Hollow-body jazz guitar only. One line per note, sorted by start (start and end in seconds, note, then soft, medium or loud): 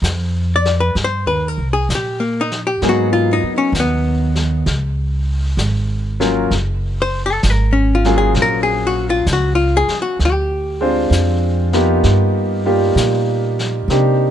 0.56 0.75 D5 medium
0.80 0.95 B4 medium
1.04 1.27 C5 medium
1.27 1.48 B4 medium
1.48 1.68 A#4 medium
1.73 1.88 G#4 medium
1.95 2.22 G4 medium
2.20 2.50 A#3 soft
2.41 2.60 D#4 medium
2.67 2.81 G4 medium
2.89 3.12 F#4 medium
3.13 3.42 F4 medium
3.33 3.52 D#4 medium
3.58 3.72 C#4 medium
3.80 4.64 B3 medium
7.02 7.21 C5 medium
7.26 7.41 A4 medium
7.50 7.76 A#4 medium
7.73 8.03 C#4 soft
7.95 8.14 F4 medium
8.18 8.33 G#4 medium
8.42 8.63 A#4 medium
8.63 8.94 G#4 medium
8.87 9.06 F#4 medium
9.10 9.25 F4 medium
9.33 9.55 F#4 medium
9.55 9.86 F4 medium
9.77 9.97 G#4 loud
10.02 10.18 F#4 medium
10.25 13.00 G4 medium